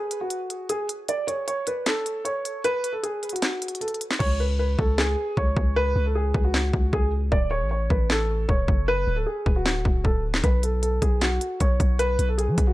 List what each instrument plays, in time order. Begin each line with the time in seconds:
Already playing: grand piano G#4
0.11 closed hi-hat
0.21 grand piano F#4
0.30 closed hi-hat
0.50 closed hi-hat
0.69 grand piano G#4, closed hi-hat
0.89 closed hi-hat
1.08 grand piano D5, closed hi-hat
1.27 grand piano C#5, closed hi-hat
1.48 grand piano C#5, closed hi-hat
1.67 grand piano B4, closed hi-hat
1.86 grand piano A4, snare, clap, closed hi-hat
2.06 closed hi-hat
2.25 grand piano C#5, closed hi-hat
2.45 closed hi-hat
2.64 grand piano B4, closed hi-hat
2.84 closed hi-hat
2.92 grand piano A4
3.03 grand piano G#4, closed hi-hat
3.23 closed hi-hat
3.29 grand piano F#4, closed hi-hat
3.36 closed hi-hat
3.42 snare, clap, closed hi-hat
3.62 closed hi-hat
3.68 closed hi-hat
3.75 closed hi-hat
3.81 grand piano A4, closed hi-hat
3.88 closed hi-hat
3.94 closed hi-hat
4.01 closed hi-hat
4.11 snare, clap
4.19 808-style bass C#2, grand piano C#5, kick, crash
4.40 grand piano B4
4.59 grand piano B4
4.79 808-style bass C#2, grand piano A4, kick
4.98 grand piano G#4, snare, clap
5.37 808-style bass C#2, grand piano C#5, kick
5.57 808-style bass C#2, kick
5.76 grand piano B4
5.96 808-style bass C#2
6.06 grand piano A4
6.15 grand piano G#4
6.34 808-style bass C#2, kick
6.44 grand piano F#4
6.54 snare, clap
6.73 808-style bass C#2, kick
6.93 808-style bass C#2, grand piano G#4, kick
7.32 808-style bass D1, grand piano D5, kick
7.51 grand piano C#5
7.61 808-style bass A1
7.71 grand piano C#5
7.90 808-style bass A1, grand piano B4, kick
8.10 grand piano A4, snare, clap
8.49 808-style bass D1, grand piano C#5, kick
8.68 808-style bass F#1, kick
8.88 grand piano B4
9.07 808-style bass D1
9.16 grand piano A4
9.26 grand piano G#4
9.46 808-style bass D1, kick
9.56 grand piano F#4
9.66 snare, clap
9.85 808-style bass D1, kick
10.04 808-style bass D1, grand piano A4, kick
10.34 snare, clap
10.44 808-style bass B1, grand piano B4, kick, closed hi-hat
10.63 grand piano A4, closed hi-hat
10.82 grand piano A4, closed hi-hat
11.02 808-style bass B1, grand piano G#4, kick, closed hi-hat
11.21 grand piano F#4, snare, clap, closed hi-hat
11.41 closed hi-hat
11.60 808-style bass B1, grand piano C#5, kick, closed hi-hat
11.80 808-style bass B1, kick, closed hi-hat
11.99 grand piano B4, closed hi-hat
12.19 808-style bass B1, closed hi-hat
12.29 grand piano A4
12.38 grand piano G#4, closed hi-hat
12.48 808-style bass F#3
12.58 808-style bass B1, kick, closed hi-hat
12.67 grand piano F#4